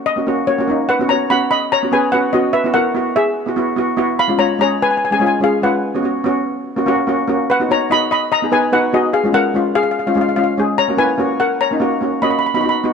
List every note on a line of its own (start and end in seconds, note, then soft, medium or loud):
0.06 0.48 D#5 loud
0.16 0.22 A#3 medium
0.16 0.23 C#4 medium
0.16 0.23 F#4 medium
0.27 0.40 A#3 medium
0.27 0.40 C#4 medium
0.27 0.40 F#4 medium
0.47 0.54 A#3 medium
0.47 0.54 C#4 medium
0.47 0.55 F#4 medium
0.47 0.66 C#5 medium
0.59 0.64 A#3 medium
0.59 0.65 C#4 medium
0.59 0.65 F#4 medium
0.67 0.86 A#3 medium
0.67 0.87 C#4 medium
0.67 0.88 D#4 medium
0.89 1.08 B4 medium
0.89 1.10 F#5 medium
0.99 1.05 B3 medium
0.99 1.06 C#4 medium
0.99 1.06 F#4 medium
1.09 1.23 B3 medium
1.09 1.23 C#4 medium
1.09 1.24 F#4 medium
1.09 1.29 C#5 medium
1.09 1.30 A#5 loud
1.30 1.62 B3 medium
1.30 1.62 C#4 medium
1.30 1.62 F#4 medium
1.30 1.50 F#5 medium
1.30 1.50 B5 loud
1.51 1.70 D#5 medium
1.51 1.72 B5 loud
1.72 1.91 C#5 medium
1.72 1.93 A#5 loud
1.83 1.88 B3 medium
1.83 1.88 C#4 medium
1.83 1.89 F#4 medium
1.92 2.05 B3 medium
1.92 2.05 C#4 medium
1.92 2.06 G#4 loud
1.92 2.12 B4 medium
1.92 2.13 G#5 loud
2.12 2.25 B3 medium
2.12 2.26 C#4 medium
2.12 2.26 F#4 medium
2.12 2.22 B4 medium
2.12 2.21 F#5 loud
2.33 2.52 B3 medium
2.33 2.52 C#4 medium
2.33 2.53 F#4 medium
2.33 2.52 D#5 medium
2.53 2.73 B4 medium
2.53 2.75 E5 loud
2.64 2.70 B3 medium
2.64 2.71 E4 medium
2.64 2.71 F#4 medium
2.74 2.88 B3 medium
2.74 2.88 E4 medium
2.74 2.89 F#4 medium
2.74 3.13 A#4 medium
2.74 3.16 F#5 loud
2.95 3.26 B3 medium
2.95 3.27 E4 medium
2.95 3.27 F#4 medium
3.16 3.95 G#4 medium
3.16 3.94 E5 medium
3.46 3.52 B3 medium
3.46 3.53 E4 medium
3.46 3.54 F#4 medium
3.56 3.69 B3 medium
3.56 3.70 E4 medium
3.56 3.70 F#4 medium
3.76 3.90 B3 medium
3.76 3.90 E4 medium
3.76 3.91 F#4 loud
3.97 4.16 B3 loud
3.97 4.16 E4 medium
3.97 4.17 F#4 loud
4.19 4.38 F5 medium
4.19 4.40 B5 loud
4.28 4.34 G#3 medium
4.28 4.35 C#4 medium
4.28 4.35 F4 medium
4.38 4.52 G#3 medium
4.38 4.52 C#4 medium
4.38 4.52 F4 medium
4.38 4.58 C#5 medium
4.38 4.60 A#5 loud
4.59 4.91 G#3 medium
4.59 4.91 C#4 medium
4.59 4.92 G#4 medium
4.59 4.71 C#5 medium
4.59 4.70 A#5 loud
4.82 4.89 B4 medium
4.82 4.90 G#5 loud
4.91 4.96 G#5 medium
4.97 5.04 G#5 medium
5.05 5.11 G#5 medium
5.11 5.17 G#3 medium
5.11 5.18 C#4 medium
5.11 5.19 G#4 medium
5.11 5.18 G#5 medium
5.19 5.34 G#3 medium
5.19 5.34 C#4 medium
5.19 5.35 F4 medium
5.19 5.25 G#5 medium
5.26 5.34 G#5 medium
5.40 5.54 G#3 medium
5.40 5.55 C#4 medium
5.40 5.55 F4 medium
5.40 5.53 G#4 medium
5.40 5.53 F5 medium
5.62 5.81 G#3 medium
5.62 5.82 C#4 medium
5.62 5.82 F4 medium
5.62 6.02 B4 medium
5.62 6.02 F#5 medium
5.95 6.00 B3 medium
5.95 6.01 C#4 medium
5.95 6.01 F#4 medium
6.03 6.17 B3 medium
6.03 6.17 C#4 medium
6.03 6.18 F#4 medium
6.24 6.56 B3 medium
6.24 6.57 C#4 medium
6.24 6.57 F#4 loud
6.76 6.83 A#3 medium
6.76 6.83 C#4 medium
6.76 6.83 F#4 medium
6.86 6.99 A#3 medium
6.86 7.00 C#4 medium
6.86 7.01 F#4 loud
7.07 7.20 A#3 medium
7.07 7.21 C#4 medium
7.07 7.21 F#4 loud
7.28 7.46 A#3 medium
7.28 7.47 C#4 medium
7.28 7.47 F#4 medium
7.50 7.68 B4 medium
7.50 7.71 F#5 loud
7.60 7.65 B3 medium
7.60 7.66 D#4 medium
7.60 7.66 F#4 medium
7.69 7.82 B3 medium
7.69 7.83 D#4 medium
7.69 7.83 F#4 medium
7.69 7.89 C#5 medium
7.69 7.92 A#5 medium
7.90 8.22 B3 medium
7.90 8.22 D#4 medium
7.90 8.23 F#4 medium
7.90 8.10 D#5 medium
7.90 8.11 B5 loud
8.11 8.30 D#5 medium
8.11 8.33 B5 loud
8.32 8.51 D#5 medium
8.32 8.53 A#5 loud
8.42 8.48 B3 medium
8.42 8.49 D#4 medium
8.42 8.49 G#4 medium
8.51 8.65 B3 medium
8.51 8.65 D#4 medium
8.51 8.66 G#4 medium
8.51 8.71 B4 medium
8.51 8.71 G#5 loud
8.72 8.85 B3 medium
8.72 8.86 D#4 medium
8.72 8.86 F#4 medium
8.72 8.92 B4 medium
8.72 8.94 F#5 loud
8.93 9.12 B3 medium
8.93 9.12 D#4 medium
8.93 9.12 F#4 medium
8.93 9.13 G#4 medium
8.93 9.15 D#5 medium
9.13 9.33 G#4 medium
9.13 9.35 F5 medium
9.24 9.30 G#3 medium
9.24 9.30 C#4 medium
9.24 9.31 F4 medium
9.33 9.46 G#3 medium
9.33 9.47 C#4 medium
9.33 9.47 F4 medium
9.33 9.72 A#4 medium
9.33 9.77 F#5 loud
9.54 9.86 G#3 medium
9.54 9.86 C#4 medium
9.54 9.87 F4 loud
9.75 9.83 G#4 medium
9.75 9.82 F5 loud
9.83 9.90 F5 medium
9.91 9.98 F5 medium
9.99 10.06 F5 medium
10.07 10.13 G#3 medium
10.07 10.13 C#4 medium
10.07 10.13 F4 medium
10.07 10.13 F5 medium
10.14 10.29 G#3 medium
10.14 10.29 C#4 medium
10.14 10.30 F4 medium
10.14 10.20 F5 medium
10.21 10.28 F5 medium
10.29 10.35 F5 medium
10.36 10.50 G#3 medium
10.36 10.50 C#4 medium
10.36 10.51 F4 medium
10.36 10.43 F5 medium
10.44 10.51 F5 medium
10.57 10.76 G#3 medium
10.57 10.77 C#4 medium
10.57 10.77 G#4 medium
10.78 10.98 C#5 medium
10.78 10.99 A#5 loud
10.88 10.95 A#3 medium
10.88 10.95 C#4 medium
10.88 10.95 F#4 medium
10.97 11.11 A#3 medium
10.97 11.12 C#4 medium
10.97 11.12 E4 medium
10.97 11.37 B4 medium
10.97 11.41 G#5 loud
11.18 11.50 A#3 medium
11.18 11.51 C#4 medium
11.18 11.51 F#4 medium
11.40 11.59 A#4 medium
11.40 11.61 F#5 medium
11.61 12.19 C#5 medium
11.61 12.24 A#5 medium
11.71 11.77 A#3 medium
11.71 11.77 C#4 medium
11.71 11.78 D#4 medium
11.80 11.93 A#3 medium
11.80 11.94 C#4 medium
11.80 11.94 F#4 medium
12.01 12.14 A#3 medium
12.01 12.15 C#4 medium
12.01 12.15 F#4 medium
12.22 12.41 A#3 medium
12.22 12.41 C#4 medium
12.22 12.42 F#4 medium
12.22 12.30 D#5 medium
12.22 12.29 B5 medium
12.30 12.37 B5 medium
12.39 12.45 B5 medium
12.46 12.53 B5 medium
12.54 12.60 B3 medium
12.54 12.60 D#4 medium
12.54 12.61 F#4 medium
12.54 12.60 B5 medium
12.61 12.76 B3 medium
12.61 12.77 D#4 medium
12.61 12.68 B5 medium
12.65 12.77 F#4 medium
12.65 12.76 B5 medium
12.84 12.93 B3 medium
12.84 12.93 D#4 medium
12.84 12.93 F#4 medium